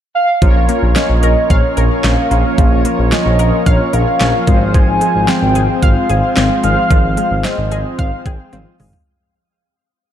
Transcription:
0.15 soft synth lead F5
0.42 analog synth bass A#1, synth pluck F3, analog synth pad F3 A#3 C#4, analog polysynth C#4 F4 A#4 C#5, kick, closed hi-hat
0.55 analog synth bass A#1
0.69 synth pluck A#3, closed hi-hat
0.82 analog synth bass A#1
0.96 synth pluck C#4, soft synth lead D#5, snare, closed hi-hat
1.10 analog synth bass A#1
1.23 analog synth bass A#1, synth pluck A#4, closed hi-hat
1.50 analog synth bass A#1, soft synth lead C#5, synth pluck F5, kick, closed hi-hat
1.77 analog synth bass A#1, synth pluck A#4, closed hi-hat
2.04 analog synth bass A#1, synth pluck C#4, soft synth lead F5, snare, clap, closed hi-hat
2.31 analog synth bass A#1, synth pluck A#3, soft synth lead F5, closed hi-hat
2.58 analog synth bass A#1, synth pluck F3, kick, closed hi-hat
2.72 analog synth bass A#1
2.85 synth pluck A#3, closed hi-hat
2.99 analog synth bass A#1
3.12 synth pluck C#4, soft synth lead D#5, snare, closed hi-hat
3.26 analog synth bass A#1
3.39 analog synth bass A#1, synth pluck A#4, closed hi-hat
3.66 analog synth bass A#1, soft synth lead C#5, synth pluck F5, kick, closed hi-hat
3.93 analog synth bass A#1, synth pluck A#4, soft synth lead F5, closed hi-hat
4.20 analog synth bass A#1, synth pluck C#4, snare, clap, closed hi-hat
4.47 analog synth bass G#1, synth pluck G#3, analog synth pad G#3 C4, analog polysynth C4 F4 G#4 C5, kick, closed hi-hat
4.74 synth pluck F3, soft synth lead G#5, kick, closed hi-hat
4.88 analog synth bass G#1
5.01 synth pluck G#3, closed hi-hat
5.15 analog synth bass G#1
5.28 synth pluck C4, soft synth lead G5, snare, closed hi-hat
5.42 analog synth bass G#1
5.55 analog synth bass G#1, synth pluck G#4, closed hi-hat
5.82 analog synth bass G#1, synth pluck F5, soft synth lead F5, kick, closed hi-hat
6.10 analog synth bass G#1, synth pluck G#4, closed hi-hat
6.37 analog synth bass G#1, synth pluck C4, snare, clap, closed hi-hat
6.63 analog synth bass G#1, synth pluck G#3, soft synth lead F5, closed hi-hat
6.91 analog synth bass G#1, synth pluck F3, kick, closed hi-hat
7.04 analog synth bass G#1
7.17 synth pluck G#3, closed hi-hat
7.31 analog synth bass G#1
7.45 synth pluck C4, soft synth lead D#5, snare, closed hi-hat
7.58 analog synth bass G#1
7.71 analog synth bass G#1, synth pluck G#4, soft synth lead D#5, closed hi-hat
7.99 analog synth bass G#1, synth pluck F5, soft synth lead F5, kick, closed hi-hat
8.26 analog synth bass G#1, synth pluck G#4, soft synth lead G5, kick, closed hi-hat
8.53 analog synth bass G#1, synth pluck C4, soft synth lead F5, closed hi-hat, high tom
8.80 analog synth bass G#1, synth pluck G#3, mid tom, open hi-hat
8.93 floor tom

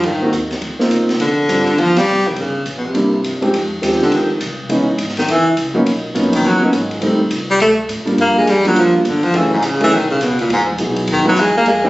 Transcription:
0.03 upright bass G#2, baritone saxophone D#3, kick, ride
0.22 upright piano A#3 C4 D#4 F#4
0.33 upright bass D#2, kick, hi-hat pedal, ride
0.51 snare, ride
0.61 upright bass D2, kick, ride
0.79 upright piano A#3 C4 D#4 F4, muted upright bass stroke, snare
0.91 upright bass C2, kick, hi-hat pedal, ride
1.09 snare, ride
1.20 upright bass A#1, baritone saxophone D3, kick, ride
1.49 upright bass G#1, upright piano G3 C4 D4 F4, kick, hi-hat pedal, ride
1.67 ride
1.78 upright bass G1, baritone saxophone F3, kick, ride
1.96 baritone saxophone G3, snare, ride
2.06 upright bass F1, hi-hat pedal
2.26 baritone saxophone D#3, ride
2.36 upright bass G1, baritone saxophone C#3, kick, ride
2.65 upright bass A#1, kick, hi-hat pedal, ride
2.77 baritone saxophone B2
2.86 baritone saxophone C3
2.94 upright bass C2, upright piano G3 A#3 D4 E4, kick, ride
3.24 upright bass G2, kick, hi-hat pedal, ride
3.41 upright piano F2 G#3 C4 D#4 G4, ride
3.53 upright bass F2, kick, ride
3.82 upright bass D#2, upright piano F3 G#3 C4 D#4 G4, kick, hi-hat pedal, ride
3.92 snare
4.02 baritone saxophone D3, snare
4.11 upright bass D2, baritone saxophone D#3, kick, ride
4.40 upright bass C2, kick, hi-hat pedal, ride
4.69 upright bass C#2, upright piano E3 G#3 B3 C#4 D#4, kick, ride
4.87 muted upright bass stroke
4.98 upright bass G#1, kick, hi-hat pedal, ride
5.09 snare
5.17 baritone saxophone D#3, snare, ride
5.28 upright bass F#1, baritone saxophone E3, kick, ride
5.57 upright bass C#2, kick, hi-hat pedal, ride
5.74 upright piano F#3 A#3 B3 C#4 D#4
5.86 upright bass B1, kick, ride
6.14 upright bass A#1, upright piano F#3 A#3 B3 C#4 D#4, kick, hi-hat pedal, ride
6.33 baritone saxophone D#3, ride
6.44 upright bass F#1, baritone saxophone F#3, kick
6.61 upright piano F#3 A#3 B3 C#4 D#4
6.73 upright bass G#1, kick, hi-hat pedal, ride
6.91 ride
7.01 upright bass A1, upright piano D#3 G3 A3 C4 D#4, kick, ride
7.31 upright bass C2, kick, hi-hat pedal, ride
7.50 baritone saxophone G3
7.60 upright bass D2, baritone saxophone A3, kick, ride
7.89 upright bass A2, kick, hi-hat pedal, ride
8.05 upright piano F3 G3 A#3 D4 F4, ride
8.18 upright bass G2, baritone saxophone A#3, kick, ride
8.38 baritone saxophone G#3
8.47 upright bass F2, baritone saxophone G3, kick, hi-hat pedal, ride
8.65 upright piano F3 G3 A#3 D4 F4, baritone saxophone F#3, ride
8.75 upright bass D2, kick, ride
8.79 baritone saxophone F3
8.96 baritone saxophone A#2
9.05 upright bass G1, baritone saxophone D3, kick, hi-hat pedal, ride
9.23 baritone saxophone F3, ride
9.33 upright bass F#1, baritone saxophone E3, upright piano F#3 A3 C#4 E4 G#4, kick, ride
9.53 baritone saxophone G#2
9.62 upright bass A1, baritone saxophone C#3, kick, hi-hat pedal, ride
9.80 baritone saxophone E3, upright piano F#3 A3 C#4 D#4 G#4, ride
9.91 upright bass B1, baritone saxophone D#3, kick, ride
10.10 baritone saxophone C#3
10.21 upright bass C#2, baritone saxophone B2, kick, hi-hat pedal, ride
10.39 baritone saxophone A#2, ride
10.49 upright bass E2, baritone saxophone G#2, kick, ride
10.68 kick
10.78 upright bass B1, upright piano F#3 B3 D#4 E4 G#4, kick, hi-hat pedal, ride
10.96 ride
11.07 upright bass D#2, kick, ride
11.12 baritone saxophone D#3
11.24 upright piano F#3 B3 D#4 E4 B4, baritone saxophone F#3
11.36 upright bass E2, baritone saxophone G#3, kick, hi-hat pedal, ride
11.54 baritone saxophone A#3, muted upright bass stroke
11.65 upright bass F2, baritone saxophone G#3, kick, ride
11.84 baritone saxophone G3, upright piano G#3 C4 D#4 F4 G4

